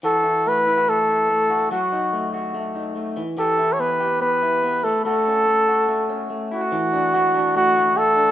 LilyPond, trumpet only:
\new Staff \with { instrumentName = "Trumpet" } { \time 4/4 \key e \dorian \tempo 4 = 144 a'4 b'4 a'2 | fis'4. r2 r8 | \tuplet 3/2 { a'4~ a'16 cis''16 } b'4 b'4. a'8 | a'2. r8 fis'8~ |
fis'2 fis'4 a'4 | }